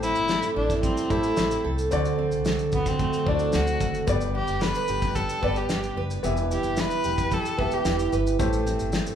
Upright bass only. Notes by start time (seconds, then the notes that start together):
0.16 G1
0.56 A1
1.11 A1
1.38 A1
1.65 C2
1.92 D2
2.33 C2
2.73 D2
3.27 D2
3.54 D2
3.81 F#1
4.08 G1
4.49 F#1
4.89 G1
5.43 G1
5.70 G1
5.96 F#1
6.23 E1
6.64 F#1
7.05 E1
7.59 E1
7.85 E1
8.13 G1
8.40 A1
8.80 G1